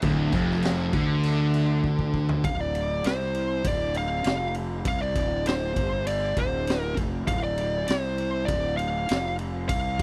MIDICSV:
0, 0, Header, 1, 5, 480
1, 0, Start_track
1, 0, Key_signature, -1, "minor"
1, 0, Tempo, 604230
1, 25, Time_signature, 4, 2, 24, 8
1, 7965, End_track
2, 0, Start_track
2, 0, Title_t, "Lead electric guitar"
2, 0, Program_c, 0, 29
2, 1943, Note_on_c, 0, 77, 100
2, 2069, Note_off_c, 0, 77, 0
2, 2069, Note_on_c, 0, 74, 92
2, 2432, Note_on_c, 0, 72, 88
2, 2436, Note_off_c, 0, 74, 0
2, 2917, Note_on_c, 0, 74, 93
2, 2921, Note_off_c, 0, 72, 0
2, 3132, Note_off_c, 0, 74, 0
2, 3158, Note_on_c, 0, 77, 90
2, 3597, Note_off_c, 0, 77, 0
2, 3877, Note_on_c, 0, 77, 100
2, 3985, Note_off_c, 0, 77, 0
2, 3988, Note_on_c, 0, 74, 95
2, 4319, Note_off_c, 0, 74, 0
2, 4349, Note_on_c, 0, 72, 91
2, 4793, Note_off_c, 0, 72, 0
2, 4823, Note_on_c, 0, 74, 100
2, 5069, Note_off_c, 0, 74, 0
2, 5071, Note_on_c, 0, 72, 81
2, 5412, Note_off_c, 0, 72, 0
2, 5412, Note_on_c, 0, 70, 81
2, 5514, Note_off_c, 0, 70, 0
2, 5780, Note_on_c, 0, 77, 98
2, 5892, Note_off_c, 0, 77, 0
2, 5907, Note_on_c, 0, 74, 98
2, 6239, Note_off_c, 0, 74, 0
2, 6252, Note_on_c, 0, 72, 94
2, 6715, Note_on_c, 0, 74, 94
2, 6751, Note_off_c, 0, 72, 0
2, 6950, Note_off_c, 0, 74, 0
2, 6969, Note_on_c, 0, 77, 97
2, 7423, Note_off_c, 0, 77, 0
2, 7696, Note_on_c, 0, 77, 99
2, 7965, Note_off_c, 0, 77, 0
2, 7965, End_track
3, 0, Start_track
3, 0, Title_t, "Distorted electric guitar"
3, 0, Program_c, 1, 30
3, 28, Note_on_c, 1, 38, 118
3, 259, Note_off_c, 1, 38, 0
3, 265, Note_on_c, 1, 41, 105
3, 736, Note_off_c, 1, 41, 0
3, 740, Note_on_c, 1, 50, 111
3, 1932, Note_off_c, 1, 50, 0
3, 7965, End_track
4, 0, Start_track
4, 0, Title_t, "Fingered electric bass"
4, 0, Program_c, 2, 33
4, 21, Note_on_c, 2, 26, 110
4, 245, Note_off_c, 2, 26, 0
4, 265, Note_on_c, 2, 29, 101
4, 712, Note_off_c, 2, 29, 0
4, 741, Note_on_c, 2, 38, 93
4, 1909, Note_off_c, 2, 38, 0
4, 1942, Note_on_c, 2, 26, 94
4, 2389, Note_off_c, 2, 26, 0
4, 2421, Note_on_c, 2, 36, 85
4, 2869, Note_off_c, 2, 36, 0
4, 2895, Note_on_c, 2, 26, 88
4, 3346, Note_off_c, 2, 26, 0
4, 3379, Note_on_c, 2, 29, 90
4, 3828, Note_off_c, 2, 29, 0
4, 3857, Note_on_c, 2, 36, 97
4, 4082, Note_off_c, 2, 36, 0
4, 4098, Note_on_c, 2, 26, 96
4, 4548, Note_off_c, 2, 26, 0
4, 4580, Note_on_c, 2, 31, 98
4, 5028, Note_off_c, 2, 31, 0
4, 5060, Note_on_c, 2, 26, 98
4, 5509, Note_off_c, 2, 26, 0
4, 5542, Note_on_c, 2, 29, 102
4, 5764, Note_off_c, 2, 29, 0
4, 5778, Note_on_c, 2, 26, 102
4, 6227, Note_off_c, 2, 26, 0
4, 6269, Note_on_c, 2, 36, 102
4, 6713, Note_off_c, 2, 36, 0
4, 6741, Note_on_c, 2, 26, 90
4, 7189, Note_off_c, 2, 26, 0
4, 7233, Note_on_c, 2, 29, 97
4, 7675, Note_off_c, 2, 29, 0
4, 7701, Note_on_c, 2, 36, 97
4, 7924, Note_off_c, 2, 36, 0
4, 7965, End_track
5, 0, Start_track
5, 0, Title_t, "Drums"
5, 15, Note_on_c, 9, 49, 85
5, 22, Note_on_c, 9, 36, 113
5, 94, Note_off_c, 9, 49, 0
5, 101, Note_off_c, 9, 36, 0
5, 257, Note_on_c, 9, 49, 65
5, 261, Note_on_c, 9, 36, 103
5, 336, Note_off_c, 9, 49, 0
5, 341, Note_off_c, 9, 36, 0
5, 399, Note_on_c, 9, 38, 35
5, 479, Note_off_c, 9, 38, 0
5, 496, Note_on_c, 9, 49, 87
5, 518, Note_on_c, 9, 38, 111
5, 576, Note_off_c, 9, 49, 0
5, 597, Note_off_c, 9, 38, 0
5, 737, Note_on_c, 9, 49, 59
5, 740, Note_on_c, 9, 36, 111
5, 817, Note_off_c, 9, 49, 0
5, 820, Note_off_c, 9, 36, 0
5, 980, Note_on_c, 9, 49, 78
5, 1060, Note_off_c, 9, 49, 0
5, 1221, Note_on_c, 9, 49, 61
5, 1301, Note_off_c, 9, 49, 0
5, 1460, Note_on_c, 9, 36, 63
5, 1540, Note_off_c, 9, 36, 0
5, 1580, Note_on_c, 9, 36, 71
5, 1659, Note_off_c, 9, 36, 0
5, 1698, Note_on_c, 9, 36, 81
5, 1778, Note_off_c, 9, 36, 0
5, 1818, Note_on_c, 9, 43, 91
5, 1898, Note_off_c, 9, 43, 0
5, 1939, Note_on_c, 9, 36, 104
5, 1941, Note_on_c, 9, 51, 82
5, 2018, Note_off_c, 9, 36, 0
5, 2021, Note_off_c, 9, 51, 0
5, 2183, Note_on_c, 9, 51, 68
5, 2262, Note_off_c, 9, 51, 0
5, 2416, Note_on_c, 9, 51, 86
5, 2438, Note_on_c, 9, 38, 109
5, 2496, Note_off_c, 9, 51, 0
5, 2517, Note_off_c, 9, 38, 0
5, 2657, Note_on_c, 9, 51, 68
5, 2737, Note_off_c, 9, 51, 0
5, 2896, Note_on_c, 9, 36, 104
5, 2896, Note_on_c, 9, 51, 88
5, 2975, Note_off_c, 9, 51, 0
5, 2976, Note_off_c, 9, 36, 0
5, 3134, Note_on_c, 9, 51, 74
5, 3213, Note_off_c, 9, 51, 0
5, 3370, Note_on_c, 9, 51, 88
5, 3391, Note_on_c, 9, 38, 115
5, 3449, Note_off_c, 9, 51, 0
5, 3471, Note_off_c, 9, 38, 0
5, 3611, Note_on_c, 9, 51, 69
5, 3690, Note_off_c, 9, 51, 0
5, 3853, Note_on_c, 9, 51, 89
5, 3855, Note_on_c, 9, 36, 103
5, 3932, Note_off_c, 9, 51, 0
5, 3935, Note_off_c, 9, 36, 0
5, 4094, Note_on_c, 9, 51, 76
5, 4096, Note_on_c, 9, 36, 104
5, 4174, Note_off_c, 9, 51, 0
5, 4176, Note_off_c, 9, 36, 0
5, 4335, Note_on_c, 9, 51, 92
5, 4356, Note_on_c, 9, 38, 110
5, 4414, Note_off_c, 9, 51, 0
5, 4436, Note_off_c, 9, 38, 0
5, 4577, Note_on_c, 9, 36, 98
5, 4578, Note_on_c, 9, 51, 73
5, 4657, Note_off_c, 9, 36, 0
5, 4657, Note_off_c, 9, 51, 0
5, 4819, Note_on_c, 9, 51, 91
5, 4899, Note_off_c, 9, 51, 0
5, 5057, Note_on_c, 9, 51, 69
5, 5058, Note_on_c, 9, 36, 102
5, 5137, Note_off_c, 9, 51, 0
5, 5138, Note_off_c, 9, 36, 0
5, 5300, Note_on_c, 9, 51, 87
5, 5322, Note_on_c, 9, 38, 114
5, 5380, Note_off_c, 9, 51, 0
5, 5401, Note_off_c, 9, 38, 0
5, 5538, Note_on_c, 9, 51, 65
5, 5539, Note_on_c, 9, 36, 93
5, 5618, Note_off_c, 9, 36, 0
5, 5618, Note_off_c, 9, 51, 0
5, 5779, Note_on_c, 9, 36, 110
5, 5780, Note_on_c, 9, 51, 86
5, 5858, Note_off_c, 9, 36, 0
5, 5859, Note_off_c, 9, 51, 0
5, 6018, Note_on_c, 9, 51, 64
5, 6097, Note_off_c, 9, 51, 0
5, 6257, Note_on_c, 9, 51, 88
5, 6278, Note_on_c, 9, 38, 115
5, 6336, Note_off_c, 9, 51, 0
5, 6358, Note_off_c, 9, 38, 0
5, 6499, Note_on_c, 9, 51, 64
5, 6578, Note_off_c, 9, 51, 0
5, 6739, Note_on_c, 9, 36, 101
5, 6739, Note_on_c, 9, 51, 86
5, 6819, Note_off_c, 9, 36, 0
5, 6819, Note_off_c, 9, 51, 0
5, 6981, Note_on_c, 9, 51, 65
5, 7061, Note_off_c, 9, 51, 0
5, 7219, Note_on_c, 9, 51, 86
5, 7240, Note_on_c, 9, 38, 111
5, 7298, Note_off_c, 9, 51, 0
5, 7320, Note_off_c, 9, 38, 0
5, 7457, Note_on_c, 9, 51, 64
5, 7536, Note_off_c, 9, 51, 0
5, 7697, Note_on_c, 9, 51, 92
5, 7699, Note_on_c, 9, 36, 99
5, 7777, Note_off_c, 9, 51, 0
5, 7778, Note_off_c, 9, 36, 0
5, 7939, Note_on_c, 9, 36, 104
5, 7939, Note_on_c, 9, 51, 71
5, 7965, Note_off_c, 9, 36, 0
5, 7965, Note_off_c, 9, 51, 0
5, 7965, End_track
0, 0, End_of_file